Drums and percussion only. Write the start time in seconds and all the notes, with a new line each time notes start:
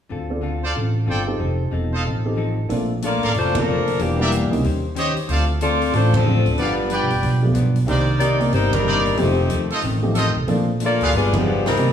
2.70 open hi-hat
3.02 closed hi-hat
3.23 open hi-hat
3.34 open hi-hat
3.55 kick, ride
3.87 open hi-hat
3.99 open hi-hat
4.32 closed hi-hat
4.53 open hi-hat
4.64 open hi-hat
4.96 closed hi-hat
5.17 open hi-hat
5.29 open hi-hat
5.61 closed hi-hat
5.82 open hi-hat
5.93 open hi-hat
6.14 kick, ride
6.46 open hi-hat
6.58 open hi-hat
6.90 closed hi-hat
7.10 open hi-hat
7.23 open hi-hat
7.55 closed hi-hat
7.76 open hi-hat
7.88 open hi-hat
8.20 closed hi-hat
8.41 open hi-hat
8.52 open hi-hat
8.73 kick, ride
9.06 open hi-hat
9.17 open hi-hat
9.50 closed hi-hat
9.70 open hi-hat
9.82 open hi-hat
10.15 closed hi-hat
10.48 open hi-hat
10.80 closed hi-hat
11.01 open hi-hat
11.12 open hi-hat
11.33 kick, ride
11.66 snare, open hi-hat
11.77 open hi-hat